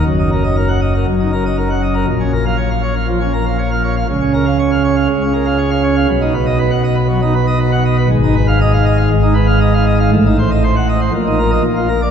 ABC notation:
X:1
M:4/4
L:1/16
Q:1/4=119
K:Ebm
V:1 name="Pipe organ"
G,, E B e B g e B G,, E B e B g e B | B,, D B f d f d f F, D B f d f d f | D, D B f d f d f D, D B f d f d f | =B,, ^D =B ^d B ^f d B ^F, D B d B f d B |
A,, E c f e f e f A,, E c f e f e f | =A,, E =c e c ^f e c B,, E B e B,, =F B =d |]
V:2 name="Pipe organ" clef=bass
G,,,8 G,,,8 | B,,,16 | D,,8 D,,8 | =B,,,16 |
A,,,8 A,,,8 | =A,,,8 B,,,4 B,,,4 |]